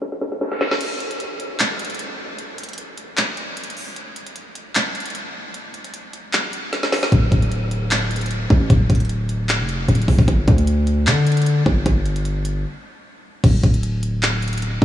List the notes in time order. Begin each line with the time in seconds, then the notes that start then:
0.02 snare, closed hi-hat
0.12 snare
0.21 snare, closed hi-hat
0.32 snare
0.41 snare, closed hi-hat
0.52 snare
0.61 snare
0.71 snare
0.81 closed hi-hat, crash
1.00 closed hi-hat
1.11 closed hi-hat
1.20 closed hi-hat
1.40 closed hi-hat
1.60 clap, closed hi-hat
1.79 closed hi-hat
1.85 closed hi-hat
1.90 closed hi-hat
1.94 closed hi-hat
1.99 closed hi-hat
2.39 closed hi-hat
2.58 closed hi-hat
2.63 closed hi-hat
2.69 closed hi-hat
2.73 closed hi-hat
2.78 closed hi-hat
2.98 closed hi-hat
3.17 clap, closed hi-hat
3.37 closed hi-hat
3.57 closed hi-hat
3.63 closed hi-hat
3.70 closed hi-hat
3.77 open hi-hat
3.96 closed hi-hat
4.16 closed hi-hat
4.27 closed hi-hat
4.36 closed hi-hat
4.55 closed hi-hat
4.75 clap, closed hi-hat
4.95 closed hi-hat
5.00 closed hi-hat
5.06 closed hi-hat
5.10 closed hi-hat
5.15 closed hi-hat
5.54 closed hi-hat
5.74 closed hi-hat
5.84 closed hi-hat
5.94 closed hi-hat
6.13 closed hi-hat
6.33 clap, closed hi-hat
6.53 closed hi-hat
6.73 snare, closed hi-hat
6.83 snare
6.92 snare, open hi-hat
7.03 snare
7.12 D1, kick, closed hi-hat
7.32 D1, kick, closed hi-hat
7.42 closed hi-hat
7.52 closed hi-hat
7.71 closed hi-hat
7.91 clap, closed hi-hat
8.11 closed hi-hat
8.16 closed hi-hat
8.21 closed hi-hat
8.26 closed hi-hat
8.31 closed hi-hat
8.50 A1, kick
8.70 D1, kick, closed hi-hat
8.90 D1, kick, closed hi-hat
8.95 closed hi-hat
9.00 closed hi-hat
9.05 closed hi-hat
9.09 closed hi-hat
9.29 closed hi-hat
9.49 clap, closed hi-hat
9.59 F1
9.69 closed hi-hat
9.88 D1, closed hi-hat
9.95 closed hi-hat
10.02 closed hi-hat
10.08 F1, kick, open hi-hat
10.19 D1, kick
10.28 G1, kick, closed hi-hat
10.48 D2, kick, closed hi-hat
10.58 closed hi-hat
10.67 closed hi-hat
10.87 closed hi-hat
11.07 D3, clap, closed hi-hat
11.27 closed hi-hat
11.32 closed hi-hat
11.37 closed hi-hat
11.42 closed hi-hat
11.46 closed hi-hat
11.66 G1, kick
11.86 G1, kick, closed hi-hat
12.06 closed hi-hat
12.16 closed hi-hat
12.25 closed hi-hat
12.45 closed hi-hat
13.44 D1, kick, closed hi-hat, crash
13.63 D1, kick, closed hi-hat
13.74 closed hi-hat
13.83 closed hi-hat
14.03 closed hi-hat
14.23 clap, closed hi-hat
14.42 closed hi-hat
14.48 closed hi-hat
14.53 closed hi-hat
14.58 closed hi-hat
14.62 closed hi-hat
14.82 A1, kick